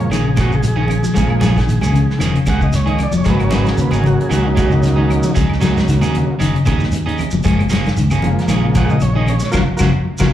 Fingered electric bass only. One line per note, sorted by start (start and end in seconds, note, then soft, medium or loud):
0.10 1.01 A#1 medium
1.17 1.62 A#1 loud
1.68 1.80 A#1 medium
1.82 2.05 C#2 medium
2.21 2.33 F1 medium
2.47 3.04 C#2 medium
3.14 3.24 F1 medium
3.26 3.71 G#1 loud
3.78 3.90 D#2 medium
3.92 4.15 G#1 medium
4.31 5.21 C#2 loud
5.37 5.81 C#2 loud
5.89 6.00 C#2 medium
6.01 6.24 D#2 medium
6.41 6.53 F#1 medium
6.68 7.24 D#2 medium
7.33 7.43 F#1 medium
7.46 7.90 F#1 loud
7.98 8.10 C#2 medium
8.12 8.34 F#1 medium
8.48 9.39 A#1 loud
9.55 9.65 F#1 medium
9.81 9.91 F#1 loud
10.21 10.30 F#1 medium